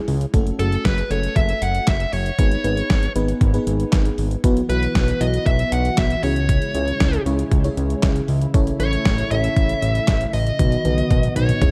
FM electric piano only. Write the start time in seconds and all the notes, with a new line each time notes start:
Already playing: G#3 C#4 E4 G#4
0.34 A3 C#4 F#4 A4
0.59 A3 C#4 F#4 G#4
1.10 A3 C#4 F#4 A4
2.39 B3 D#4 G#4 B4
2.64 B3 D#4 G#4 B4
3.16 B3 D#4 G#4 B4
3.54 B3 D#4 G#4 B4
4.44 B3 E4 F#4 B4
4.70 B3 E4 F#4 B4
5.21 B3 E4 F#4 B4
6.23 C#4 E4 G#4 C#5
6.75 C#4 E4 G#4 C#5
7.26 C#4 E4 G#4 C#5
7.65 C#4 E4 G#4 C#5
8.54 C#4 E4 A4 C#5
8.80 C#4 E4 A4 C#5
9.31 C#4 E4 A4 C#5
10.59 B3 D#4 F#4 B4
10.85 B3 D#4 F#4 B4
11.36 B3 D#4 F#4 B4
11.62 C#4 E4 G#4 C#5